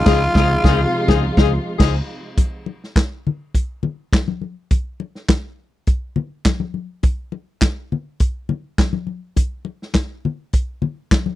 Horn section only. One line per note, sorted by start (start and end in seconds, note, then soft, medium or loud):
0.06 0.21 F3 loud
0.06 0.21 D#4 loud
0.06 0.21 G#4 loud
0.35 0.50 F3 loud
0.35 0.50 D#4 medium
0.35 0.50 G#4 medium
0.64 0.79 F3 loud
0.64 0.79 D#4 loud
0.64 0.79 G#4 loud
1.08 1.23 F3 medium
1.08 1.23 D#4 loud
1.08 1.23 G#4 medium
1.37 1.52 F3 loud
1.37 1.51 D#4 loud
1.37 1.52 G#4 loud
1.79 1.94 F3 loud
1.79 1.95 D#4 loud
1.79 1.94 G#4 medium